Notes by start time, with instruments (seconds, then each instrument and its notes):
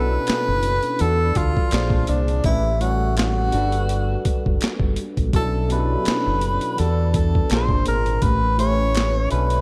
Already playing: fingered electric bass B1, tine electric piano B2 B3 C#4 D4 E4 A4, tenor saxophone B4
0.27 muted fingered electric bass stroke, snare, clap, closed hi-hat
0.48 fingered electric bass F#1
0.63 closed hi-hat
0.83 closed hi-hat
0.99 fingered electric bass E2, tine electric piano E3 B3 D4 F#4, tenor saxophone A4, closed hi-hat
1.04 tine electric piano A4
1.35 fingered electric bass D2, tenor saxophone F4, kick, closed hi-hat
1.57 kick
1.71 fingered electric bass A#1, tine electric piano A#2 A#3 D4 G#4, snare, clap, closed hi-hat
1.76 tine electric piano C5
1.90 kick
2.07 fingered electric bass C2, tenor saxophone D4, closed hi-hat
2.28 closed hi-hat
2.44 fingered electric bass A1, tine electric piano A2 A3 C#4 G4, tenor saxophone E4, kick, closed hi-hat
2.48 tine electric piano B4
2.80 tine electric piano A2 G3 A3 C#4, tenor saxophone F#4, closed hi-hat
2.84 tine electric piano A4
3.17 tenor saxophone F#4, snare, clap, closed hi-hat
3.52 fingered electric bass G1, tine electric piano G3 D4 F#4 A4, closed hi-hat
3.57 tine electric piano B4
3.72 closed hi-hat
3.89 closed hi-hat
4.25 muted fingered electric bass stroke, kick, closed hi-hat
4.46 fingered electric bass F#1, kick
4.61 muted fingered electric bass stroke, snare, clap, closed hi-hat
4.80 fingered electric bass G1, kick
4.96 closed hi-hat
5.17 fingered electric bass A#1, kick, closed hi-hat
5.33 fingered electric bass B1, tine electric piano B2 F#3 C#4 D4, tenor saxophone A4, kick, closed hi-hat
5.37 tine electric piano E4 A4
5.68 tine electric piano B2 F#3 C#4 D4 E4, tenor saxophone B4, closed hi-hat
5.73 tine electric piano G4
5.80 tine electric piano A4
6.05 muted fingered electric bass stroke, snare, clap, closed hi-hat
6.27 fingered electric bass F#1
6.41 closed hi-hat
6.61 closed hi-hat
6.76 fingered electric bass E2, tine electric piano E3 B3 D4 F#4, tenor saxophone A4, closed hi-hat
6.81 tine electric piano G4
6.87 tine electric piano A4
7.14 tenor saxophone A4, kick, closed hi-hat
7.35 kick
7.49 fingered electric bass A#1, tine electric piano A#2 A#3 C#4 G#4, tenor saxophone C5, snare, clap, closed hi-hat
7.54 tine electric piano C5
7.58 tine electric piano D4
7.69 fingered electric bass G1, kick
7.86 fingered electric bass G#1, tenor saxophone A#4, closed hi-hat
8.06 closed hi-hat
8.21 fingered electric bass A1, tine electric piano A2 A3 C#4 G4, tenor saxophone B4, kick, closed hi-hat
8.26 tine electric piano B4
8.58 tine electric piano A2 A3 C#4 G4, tenor saxophone C#5, closed hi-hat
8.62 tine electric piano B4
8.95 snare, clap, closed hi-hat
9.30 fingered electric bass B1, tine electric piano B2 A3 C#4 D4, tenor saxophone B4, closed hi-hat
9.34 tine electric piano B4
9.50 closed hi-hat